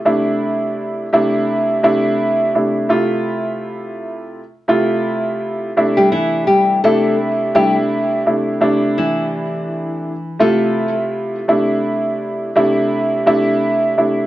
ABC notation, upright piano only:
X:1
M:4/4
L:1/8
Q:"Swing 16ths" 1/4=84
K:C
V:1 name="Upright piano"
[C,A,DE]3 [C,A,DE]2 [C,A,DE]2 [C,A,DE] | [C,A,EF]4 z [C,A,EF]3 | [C,A,DE]3 [C,A,DE]2 [C,A,DE]2 [C,A,DE] | [C,A,DE]4 z [C,A,EF]3 |
[C,A,DE]3 [C,A,DE]2 [C,A,DE]2 [C,A,DE] |]